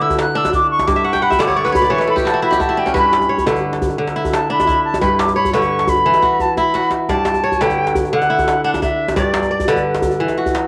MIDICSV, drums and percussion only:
0, 0, Header, 1, 2, 480
1, 0, Start_track
1, 0, Tempo, 345622
1, 1210, Time_signature, 12, 3, 24, 8
1, 14824, End_track
2, 0, Start_track
2, 0, Title_t, "Djembe"
2, 141, Note_on_c, 9, 63, 57
2, 141, Note_on_c, 9, 64, 52
2, 258, Note_on_c, 9, 62, 74
2, 279, Note_off_c, 9, 63, 0
2, 279, Note_off_c, 9, 64, 0
2, 397, Note_off_c, 9, 62, 0
2, 511, Note_on_c, 9, 62, 23
2, 624, Note_off_c, 9, 62, 0
2, 624, Note_on_c, 9, 62, 57
2, 624, Note_on_c, 9, 63, 59
2, 737, Note_off_c, 9, 62, 0
2, 737, Note_on_c, 9, 62, 24
2, 737, Note_on_c, 9, 64, 70
2, 763, Note_off_c, 9, 63, 0
2, 876, Note_off_c, 9, 62, 0
2, 876, Note_off_c, 9, 64, 0
2, 1102, Note_on_c, 9, 62, 57
2, 1102, Note_on_c, 9, 63, 53
2, 1224, Note_off_c, 9, 62, 0
2, 1224, Note_on_c, 9, 62, 22
2, 1224, Note_on_c, 9, 64, 75
2, 1241, Note_off_c, 9, 63, 0
2, 1346, Note_off_c, 9, 62, 0
2, 1346, Note_on_c, 9, 62, 23
2, 1363, Note_off_c, 9, 64, 0
2, 1484, Note_off_c, 9, 62, 0
2, 1585, Note_on_c, 9, 63, 59
2, 1724, Note_off_c, 9, 63, 0
2, 1829, Note_on_c, 9, 64, 60
2, 1943, Note_on_c, 9, 62, 73
2, 1968, Note_off_c, 9, 64, 0
2, 2067, Note_on_c, 9, 63, 55
2, 2082, Note_off_c, 9, 62, 0
2, 2206, Note_off_c, 9, 63, 0
2, 2310, Note_on_c, 9, 62, 56
2, 2429, Note_on_c, 9, 64, 77
2, 2448, Note_off_c, 9, 62, 0
2, 2551, Note_on_c, 9, 63, 47
2, 2568, Note_off_c, 9, 64, 0
2, 2659, Note_on_c, 9, 62, 20
2, 2690, Note_off_c, 9, 63, 0
2, 2791, Note_off_c, 9, 62, 0
2, 2791, Note_on_c, 9, 62, 48
2, 2930, Note_off_c, 9, 62, 0
2, 3011, Note_on_c, 9, 63, 54
2, 3011, Note_on_c, 9, 64, 49
2, 3149, Note_on_c, 9, 62, 67
2, 3150, Note_off_c, 9, 63, 0
2, 3150, Note_off_c, 9, 64, 0
2, 3288, Note_off_c, 9, 62, 0
2, 3506, Note_on_c, 9, 62, 54
2, 3506, Note_on_c, 9, 63, 49
2, 3616, Note_off_c, 9, 62, 0
2, 3616, Note_on_c, 9, 62, 22
2, 3616, Note_on_c, 9, 64, 59
2, 3645, Note_off_c, 9, 63, 0
2, 3755, Note_off_c, 9, 62, 0
2, 3755, Note_off_c, 9, 64, 0
2, 3987, Note_on_c, 9, 62, 47
2, 3987, Note_on_c, 9, 63, 47
2, 4104, Note_off_c, 9, 62, 0
2, 4104, Note_on_c, 9, 62, 20
2, 4104, Note_on_c, 9, 64, 69
2, 4126, Note_off_c, 9, 63, 0
2, 4243, Note_off_c, 9, 62, 0
2, 4243, Note_off_c, 9, 64, 0
2, 4345, Note_on_c, 9, 62, 66
2, 4464, Note_on_c, 9, 63, 51
2, 4484, Note_off_c, 9, 62, 0
2, 4603, Note_off_c, 9, 63, 0
2, 4697, Note_on_c, 9, 64, 52
2, 4816, Note_on_c, 9, 62, 64
2, 4836, Note_off_c, 9, 64, 0
2, 4937, Note_on_c, 9, 63, 53
2, 4955, Note_off_c, 9, 62, 0
2, 5076, Note_off_c, 9, 63, 0
2, 5179, Note_on_c, 9, 62, 54
2, 5302, Note_on_c, 9, 64, 67
2, 5318, Note_off_c, 9, 62, 0
2, 5415, Note_on_c, 9, 63, 48
2, 5441, Note_off_c, 9, 64, 0
2, 5539, Note_on_c, 9, 62, 20
2, 5554, Note_off_c, 9, 63, 0
2, 5658, Note_off_c, 9, 62, 0
2, 5658, Note_on_c, 9, 62, 51
2, 5797, Note_off_c, 9, 62, 0
2, 5902, Note_on_c, 9, 63, 51
2, 5902, Note_on_c, 9, 64, 54
2, 6020, Note_on_c, 9, 62, 76
2, 6041, Note_off_c, 9, 63, 0
2, 6041, Note_off_c, 9, 64, 0
2, 6158, Note_off_c, 9, 62, 0
2, 6261, Note_on_c, 9, 62, 19
2, 6385, Note_off_c, 9, 62, 0
2, 6385, Note_on_c, 9, 62, 55
2, 6385, Note_on_c, 9, 63, 52
2, 6508, Note_off_c, 9, 62, 0
2, 6508, Note_on_c, 9, 62, 22
2, 6508, Note_on_c, 9, 64, 66
2, 6524, Note_off_c, 9, 63, 0
2, 6647, Note_off_c, 9, 62, 0
2, 6647, Note_off_c, 9, 64, 0
2, 6862, Note_on_c, 9, 62, 53
2, 6862, Note_on_c, 9, 63, 50
2, 6983, Note_off_c, 9, 62, 0
2, 6983, Note_on_c, 9, 62, 23
2, 6983, Note_on_c, 9, 64, 66
2, 7000, Note_off_c, 9, 63, 0
2, 7121, Note_off_c, 9, 62, 0
2, 7121, Note_off_c, 9, 64, 0
2, 7211, Note_on_c, 9, 62, 74
2, 7334, Note_on_c, 9, 63, 57
2, 7350, Note_off_c, 9, 62, 0
2, 7473, Note_off_c, 9, 63, 0
2, 7570, Note_on_c, 9, 64, 58
2, 7686, Note_on_c, 9, 62, 64
2, 7709, Note_off_c, 9, 64, 0
2, 7805, Note_on_c, 9, 63, 56
2, 7825, Note_off_c, 9, 62, 0
2, 7943, Note_off_c, 9, 63, 0
2, 8043, Note_on_c, 9, 62, 56
2, 8160, Note_on_c, 9, 64, 76
2, 8182, Note_off_c, 9, 62, 0
2, 8280, Note_on_c, 9, 62, 19
2, 8280, Note_on_c, 9, 63, 50
2, 8298, Note_off_c, 9, 64, 0
2, 8404, Note_off_c, 9, 62, 0
2, 8404, Note_on_c, 9, 62, 21
2, 8418, Note_off_c, 9, 63, 0
2, 8525, Note_off_c, 9, 62, 0
2, 8525, Note_on_c, 9, 62, 54
2, 8646, Note_on_c, 9, 64, 40
2, 8664, Note_off_c, 9, 62, 0
2, 8785, Note_off_c, 9, 64, 0
2, 8886, Note_on_c, 9, 64, 50
2, 9024, Note_off_c, 9, 64, 0
2, 9123, Note_on_c, 9, 64, 45
2, 9262, Note_off_c, 9, 64, 0
2, 9361, Note_on_c, 9, 62, 56
2, 9499, Note_off_c, 9, 62, 0
2, 9593, Note_on_c, 9, 62, 63
2, 9732, Note_off_c, 9, 62, 0
2, 9846, Note_on_c, 9, 62, 19
2, 9846, Note_on_c, 9, 64, 61
2, 9963, Note_off_c, 9, 62, 0
2, 9963, Note_on_c, 9, 62, 19
2, 9985, Note_off_c, 9, 64, 0
2, 10070, Note_off_c, 9, 62, 0
2, 10070, Note_on_c, 9, 62, 68
2, 10195, Note_on_c, 9, 63, 51
2, 10209, Note_off_c, 9, 62, 0
2, 10334, Note_off_c, 9, 63, 0
2, 10445, Note_on_c, 9, 64, 48
2, 10566, Note_on_c, 9, 62, 62
2, 10583, Note_off_c, 9, 64, 0
2, 10693, Note_on_c, 9, 63, 52
2, 10705, Note_off_c, 9, 62, 0
2, 10832, Note_off_c, 9, 63, 0
2, 10929, Note_on_c, 9, 62, 54
2, 11046, Note_on_c, 9, 64, 67
2, 11068, Note_off_c, 9, 62, 0
2, 11178, Note_on_c, 9, 63, 46
2, 11185, Note_off_c, 9, 64, 0
2, 11304, Note_on_c, 9, 62, 19
2, 11317, Note_off_c, 9, 63, 0
2, 11413, Note_off_c, 9, 62, 0
2, 11413, Note_on_c, 9, 62, 47
2, 11552, Note_off_c, 9, 62, 0
2, 11648, Note_on_c, 9, 63, 52
2, 11648, Note_on_c, 9, 64, 51
2, 11773, Note_on_c, 9, 62, 65
2, 11787, Note_off_c, 9, 63, 0
2, 11787, Note_off_c, 9, 64, 0
2, 11911, Note_off_c, 9, 62, 0
2, 12018, Note_on_c, 9, 62, 23
2, 12141, Note_off_c, 9, 62, 0
2, 12141, Note_on_c, 9, 62, 52
2, 12141, Note_on_c, 9, 63, 56
2, 12257, Note_off_c, 9, 62, 0
2, 12257, Note_on_c, 9, 62, 22
2, 12257, Note_on_c, 9, 64, 70
2, 12280, Note_off_c, 9, 63, 0
2, 12396, Note_off_c, 9, 62, 0
2, 12396, Note_off_c, 9, 64, 0
2, 12615, Note_on_c, 9, 62, 58
2, 12615, Note_on_c, 9, 63, 55
2, 12734, Note_off_c, 9, 62, 0
2, 12734, Note_on_c, 9, 62, 24
2, 12734, Note_on_c, 9, 64, 78
2, 12754, Note_off_c, 9, 63, 0
2, 12849, Note_off_c, 9, 62, 0
2, 12849, Note_on_c, 9, 62, 22
2, 12873, Note_off_c, 9, 64, 0
2, 12967, Note_off_c, 9, 62, 0
2, 12967, Note_on_c, 9, 62, 80
2, 13090, Note_on_c, 9, 63, 60
2, 13105, Note_off_c, 9, 62, 0
2, 13229, Note_off_c, 9, 63, 0
2, 13330, Note_on_c, 9, 64, 62
2, 13442, Note_on_c, 9, 62, 65
2, 13469, Note_off_c, 9, 64, 0
2, 13559, Note_on_c, 9, 63, 61
2, 13581, Note_off_c, 9, 62, 0
2, 13698, Note_off_c, 9, 63, 0
2, 13811, Note_on_c, 9, 62, 57
2, 13919, Note_on_c, 9, 64, 68
2, 13950, Note_off_c, 9, 62, 0
2, 14033, Note_on_c, 9, 63, 48
2, 14058, Note_off_c, 9, 64, 0
2, 14172, Note_off_c, 9, 63, 0
2, 14172, Note_on_c, 9, 62, 20
2, 14281, Note_off_c, 9, 62, 0
2, 14281, Note_on_c, 9, 62, 50
2, 14420, Note_off_c, 9, 62, 0
2, 14528, Note_on_c, 9, 63, 53
2, 14528, Note_on_c, 9, 64, 54
2, 14647, Note_on_c, 9, 62, 67
2, 14667, Note_off_c, 9, 63, 0
2, 14667, Note_off_c, 9, 64, 0
2, 14786, Note_off_c, 9, 62, 0
2, 14824, End_track
0, 0, End_of_file